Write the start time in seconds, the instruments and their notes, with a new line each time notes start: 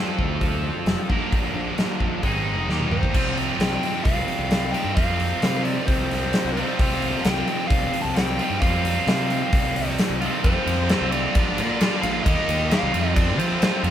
Already playing: distorted electric guitar F3 C4 F4 A4
0.19 fingered electric bass D2, kick
0.41 kick, open hi-hat
0.86 fingered electric bass F1, snare, open hi-hat
1.09 fingered electric bass A#1, distorted electric guitar A#2 D3 F3 A#3 D4 A#4, kick
1.32 fingered electric bass A#1, kick, open hi-hat
1.54 fingered electric bass A#1
1.78 snare, open hi-hat
2.00 fingered electric bass A#1, kick
2.22 fingered electric bass G#1, distorted electric guitar G#3 C4 D#4 G#4, kick, open hi-hat
2.56 fingered electric bass F1
2.68 fingered electric bass D#2, distorted electric guitar D#3 G3 A#3 D#4 G4, snare
2.80 mid tom
2.90 fingered electric bass D#2, lead electric guitar C5, mid tom
3.03 kick
3.13 fingered electric bass C2, distorted electric guitar C3 F3 G3 C4 F4, kick, crash
3.37 open hi-hat
3.59 fingered electric bass C2, lead electric guitar G5, snare, open hi-hat
3.83 open hi-hat
4.04 fingered electric bass C2, lead electric guitar F5, kick, open hi-hat
4.28 open hi-hat
4.39 fingered electric bass C2
4.51 snare, open hi-hat
4.72 distorted electric guitar F3 G3 C4 F4, lead electric guitar G5, open hi-hat
4.77 distorted electric guitar C3
4.84 fingered electric bass G2
4.95 fingered electric bass F2, distorted electric guitar C3 F3 G3 C4 F4, lead electric guitar F5, kick, open hi-hat
5.20 open hi-hat
5.42 fingered electric bass C3, snare, open hi-hat
5.64 lead electric guitar D5, open hi-hat
5.86 fingered electric bass C2, lead electric guitar C5, kick, open hi-hat
6.11 snare, open hi-hat
6.33 snare, open hi-hat
6.45 fingered electric bass C2
6.53 distorted electric guitar C4 F4, lead electric guitar C5, open hi-hat
6.58 distorted electric guitar C3 F3 G3
6.78 fingered electric bass C2, distorted electric guitar C3 F3 G3 C4 F4, kick, open hi-hat
7.02 open hi-hat
7.21 lead electric guitar G5
7.25 fingered electric bass C2, snare, open hi-hat
7.48 open hi-hat
7.67 fingered electric bass C2, lead electric guitar F5, kick, open hi-hat
7.94 open hi-hat
8.02 fingered electric bass C2, lead electric guitar A5
8.15 lead electric guitar G5, snare, open hi-hat
8.38 distorted electric guitar C3 F3 G3 C4 F4, open hi-hat
8.50 fingered electric bass G2
8.60 fingered electric bass F2, distorted electric guitar C3 F3 G3 C4 F4, lead electric guitar F5, kick, open hi-hat
8.85 open hi-hat
9.07 fingered electric bass C3, snare, open hi-hat
9.30 open hi-hat
9.53 fingered electric bass C2, kick, open hi-hat
9.76 open hi-hat
9.99 snare, open hi-hat
10.10 fingered electric bass C2
10.21 distorted electric guitar C3 F3 G3 C4 F4, open hi-hat
10.44 distorted electric guitar F2 C3 F3 A3 C4 F4, fingered electric bass F2, lead electric guitar C5, kick, ride
10.66 fingered electric bass F2, ride
10.89 distorted electric guitar F3 A3 C4 F4, snare, ride
11.01 fingered electric bass C2
11.11 lead electric guitar D5, ride
11.35 fingered electric bass A#1, distorted electric guitar A#2 D3 A#3 D4 F4, kick, ride
11.57 fingered electric bass A#2, distorted electric guitar D4 F4, ride
11.61 distorted electric guitar A#3
11.79 distorted electric guitar A#2 D3 A#3 D4 F4, snare, ride
12.02 fingered electric bass A#1, distorted electric guitar A#3 D4 F4, lead electric guitar F5, ride
12.24 fingered electric bass D#2, distorted electric guitar D#3 A#3 D#4, lead electric guitar D#5, kick, ride
12.29 distorted electric guitar G4
12.48 fingered electric bass D#2, ride
12.69 distorted electric guitar D#3 A#3 D#4, lead electric guitar F5, snare, ride
12.74 distorted electric guitar G4
12.83 fingered electric bass C2
12.92 fingered electric bass F2, distorted electric guitar F2 C3 F3 A3 C4 F4, ride
13.14 lead electric guitar D5, kick, ride
13.38 fingered electric bass F3, distorted electric guitar F3 A3 C4 F4, lead electric guitar C5, ride
13.61 distorted electric guitar F2 C3 F3 A3 C4 F4, snare, ride
13.83 fingered electric bass F2, distorted electric guitar F3 A3 C4 F4, ride